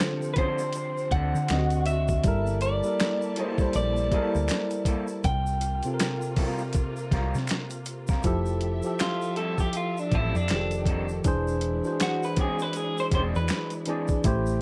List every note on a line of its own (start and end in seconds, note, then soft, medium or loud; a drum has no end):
0.00 2.22 C3 medium
0.00 1.09 D3 medium
0.00 1.47 F3 medium
0.00 2.22 C4 medium
0.00 1.09 D4 medium
0.00 1.10 F4 medium
0.00 0.33 A4 medium
0.00 1.10 C5 medium
0.00 finger snap soft
0.00 finger snap medium
0.00 muted clean electric guitar stroke soft
0.00 snare loud
0.00 closed hi-hat medium
0.00 shaker soft
0.22 shaker soft
0.34 0.60 F3 medium
0.34 0.61 C4 medium
0.34 0.38 B4 medium
0.34 kick medium
0.34 closed hi-hat medium
0.38 0.61 D4 medium
0.38 0.61 A4 medium
0.38 1.15 C5 medium
0.58 shaker medium
0.73 muted clean electric guitar stroke soft
0.73 closed hi-hat medium
0.73 shaker medium
0.97 shaker soft
1.11 1.32 D2 medium
1.11 1.36 F3 medium
1.11 1.36 C4 medium
1.11 1.36 D4 medium
1.11 1.37 A4 medium
1.11 1.86 F#5 loud
1.11 kick medium
1.11 closed hi-hat medium
1.35 1.48 D3 medium
1.35 shaker soft
1.48 2.21 D2 medium
1.48 2.15 D3 medium
1.48 2.16 C4 medium
1.48 2.23 D4 medium
1.48 2.23 F#4 medium
1.48 finger snap medium
1.48 snare medium
1.48 closed hi-hat medium
1.48 shaker medium
1.52 1.58 D#4 soft
1.52 2.17 D#5 medium
1.58 2.19 F#4 medium
1.70 closed hi-hat soft
1.70 shaker soft
1.86 2.58 E5 loud
1.86 closed hi-hat medium
1.86 shaker soft
2.08 kick medium
2.08 shaker soft
2.24 2.80 G1 loud
2.24 5.22 G3 medium
2.24 2.74 G3 medium
2.24 5.22 A#3 medium
2.24 5.21 E4 medium
2.24 2.75 E4 medium
2.24 2.75 A4 medium
2.24 5.21 A5 medium
2.24 kick loud
2.24 closed hi-hat medium
2.24 shaker medium
2.28 2.76 A#4 loud
2.47 shaker soft
2.61 3.42 D5 medium
2.61 closed hi-hat medium
2.61 shaker soft
2.83 3.45 G3 medium
2.83 3.46 E4 medium
2.83 3.46 A4 medium
2.83 3.47 A#4 medium
2.83 shaker soft
3.00 finger snap medium
3.00 muted clean electric guitar stroke soft
3.00 snare loud
3.00 closed hi-hat medium
3.00 shaker soft
3.22 shaker soft
3.36 3.61 G3 medium
3.36 3.61 A#3 medium
3.36 3.61 E4 medium
3.36 3.62 A4 medium
3.36 closed hi-hat medium
3.42 3.75 C5 medium
3.58 4.05 G3 medium
3.58 4.05 E4 medium
3.58 4.06 A4 medium
3.58 4.06 C5 medium
3.58 kick medium
3.58 shaker soft
3.73 4.09 A#1 medium
3.73 5.25 D5 medium
3.73 muted clean electric guitar stroke soft
3.73 closed hi-hat medium
3.73 shaker soft
3.97 shaker soft
4.12 4.36 G3 medium
4.12 5.25 G3 medium
4.12 4.36 A#3 medium
4.12 4.36 E4 medium
4.12 5.25 E4 medium
4.12 4.36 A4 medium
4.12 5.26 A4 medium
4.12 kick medium
4.12 closed hi-hat medium
4.16 5.26 A#4 medium
4.35 4.48 D2 medium
4.35 shaker soft
4.48 finger snap medium
4.48 closed hi-hat medium
4.48 shaker medium
4.51 finger snap medium
4.51 snare medium
4.71 closed hi-hat soft
4.71 shaker soft
4.85 5.06 G3 medium
4.85 5.06 A#3 medium
4.85 5.06 E4 medium
4.85 5.07 A4 medium
4.85 kick medium
4.85 closed hi-hat medium
4.85 shaker soft
5.07 shaker medium
5.23 5.80 C2 loud
5.23 8.21 C3 medium
5.23 8.22 A#3 medium
5.23 8.22 F4 medium
5.23 7.83 G5 medium
5.23 kick medium
5.23 closed hi-hat medium
5.23 shaker soft
5.47 shaker soft
5.61 closed hi-hat medium
5.61 shaker soft
5.83 7.09 C3 medium
5.83 7.09 C4 medium
5.83 7.10 F4 medium
5.83 closed hi-hat soft
5.83 shaker soft
5.88 5.91 A4 medium
5.94 7.13 A#4 medium
5.99 finger snap soft
5.99 finger snap medium
5.99 muted clean electric guitar stroke soft
5.99 snare loud
5.99 closed hi-hat medium
5.99 shaker medium
6.22 shaker soft
6.36 6.61 G3 medium
6.36 6.61 C4 medium
6.36 6.61 F4 medium
6.36 6.61 A#4 medium
6.36 kick medium
6.36 open hi-hat medium
6.58 shaker soft
6.73 muted clean electric guitar stroke soft
6.73 kick medium
6.73 closed hi-hat medium
6.73 shaker medium
6.97 shaker soft
7.12 7.32 C2 medium
7.12 7.35 G3 medium
7.12 7.36 C4 medium
7.12 7.36 F4 medium
7.12 7.37 A#4 medium
7.12 kick medium
7.12 snare soft
7.12 closed hi-hat medium
7.34 7.48 C3 medium
7.34 snare soft
7.34 shaker soft
7.47 finger snap medium
7.47 closed hi-hat medium
7.47 shaker medium
7.51 finger snap medium
7.51 snare medium
7.70 closed hi-hat soft
7.70 shaker soft
7.86 closed hi-hat medium
7.86 shaker soft
8.07 8.23 C4 medium
8.07 8.23 F4 soft
8.07 8.22 A#4 medium
8.07 kick medium
8.07 shaker soft
8.12 8.23 G3 soft
8.12 snare soft
8.23 8.80 F1 medium
8.23 8.74 F3 loud
8.23 11.22 F3 medium
8.23 8.74 E4 medium
8.23 10.47 G4 medium
8.23 8.75 G4 medium
8.23 11.21 A4 medium
8.23 8.75 A4 loud
8.23 10.47 E5 medium
8.23 kick medium
8.23 closed hi-hat medium
8.23 shaker soft
8.46 shaker soft
8.61 closed hi-hat medium
8.82 10.08 F3 medium
8.82 10.09 G4 medium
8.82 10.09 E5 medium
8.82 shaker soft
8.87 10.10 A4 medium
8.99 9.37 F4 medium
8.99 finger snap medium
8.99 muted clean electric guitar stroke soft
8.99 snare loud
8.99 closed hi-hat medium
8.99 shaker medium
9.21 shaker soft
9.36 9.61 G3 medium
9.36 9.61 C4 medium
9.36 9.61 E4 medium
9.36 9.60 A4 medium
9.36 9.62 A4 medium
9.36 closed hi-hat medium
9.58 9.75 G4 medium
9.58 kick medium
9.58 shaker soft
9.73 9.99 F4 medium
9.73 muted clean electric guitar stroke soft
9.73 closed hi-hat medium
9.73 shaker soft
9.97 10.15 D4 medium
9.97 shaker soft
10.12 10.32 A1 medium
10.12 10.36 G3 medium
10.12 10.36 C4 medium
10.12 10.37 E4 medium
10.12 10.36 E4 medium
10.12 10.37 A4 medium
10.12 kick medium
10.12 closed hi-hat medium
10.35 10.48 F2 medium
10.35 11.10 D4 medium
10.35 shaker soft
10.48 11.20 F1 medium
10.48 11.24 D#3 medium
10.48 11.16 F3 medium
10.48 11.24 G4 medium
10.48 finger snap medium
10.48 closed hi-hat medium
10.48 shaker medium
10.51 11.16 D#3 medium
10.51 11.17 G4 medium
10.51 10.59 G#4 medium
10.51 finger snap medium
10.51 snare medium
10.60 11.20 A4 medium
10.71 closed hi-hat soft
10.71 shaker soft
10.86 11.06 G3 medium
10.86 11.06 C4 medium
10.86 11.06 D#4 medium
10.86 11.07 A4 medium
10.86 kick medium
10.86 closed hi-hat medium
11.09 shaker medium
11.23 11.81 E1 medium
11.23 11.74 E3 loud
11.23 14.21 G#3 medium
11.23 14.21 D4 medium
11.23 11.75 D4 loud
11.23 14.21 E4 medium
11.23 11.75 G#4 loud
11.23 kick loud
11.23 closed hi-hat medium
11.23 shaker medium
11.28 11.76 C5 loud
11.48 shaker soft
11.61 closed hi-hat medium
11.84 13.08 E3 medium
11.84 13.09 D4 medium
11.84 11.90 F#4 soft
11.84 13.10 C5 medium
11.84 shaker soft
11.93 13.13 G#4 medium
12.00 12.24 F#4 medium
12.00 finger snap medium
12.00 snare loud
12.00 closed hi-hat medium
12.00 shaker medium
12.23 12.37 B4 medium
12.23 shaker soft
12.36 12.61 G#3 medium
12.36 12.61 C4 medium
12.36 12.61 D4 medium
12.36 12.62 G#4 medium
12.36 kick medium
12.36 closed hi-hat medium
12.41 12.62 G#4 medium
12.59 12.77 B4 medium
12.59 shaker medium
12.73 12.99 G#4 medium
12.73 muted clean electric guitar stroke soft
12.73 closed hi-hat medium
12.73 shaker soft
12.98 13.05 C5 loud
12.98 shaker soft
13.11 13.32 E1 medium
13.11 13.35 G#3 medium
13.11 13.36 C4 medium
13.11 13.36 D4 medium
13.11 13.36 G#4 medium
13.11 13.20 C5 medium
13.11 kick medium
13.11 closed hi-hat medium
13.35 13.49 E2 medium
13.35 13.73 B4 medium
13.35 shaker soft
13.48 finger snap medium
13.48 closed hi-hat medium
13.48 shaker medium
13.50 finger snap medium
13.50 snare medium
13.70 closed hi-hat soft
13.70 shaker soft
13.86 14.20 E3 medium
13.86 14.06 G#3 medium
13.86 14.07 C4 medium
13.86 14.20 D4 medium
13.86 14.21 G#4 medium
13.86 closed hi-hat medium
13.90 14.07 D4 medium
13.90 14.07 G#4 medium
13.90 14.21 D5 medium
14.08 kick medium
14.08 shaker soft
14.24 14.62 A1 loud
14.24 14.62 A3 medium
14.24 14.62 A3 loud
14.24 14.62 C4 medium
14.24 14.62 E4 loud
14.24 14.62 G4 medium
14.24 14.62 G4 loud
14.24 14.62 C5 loud
14.24 kick loud
14.24 closed hi-hat medium
14.24 shaker medium
14.46 shaker soft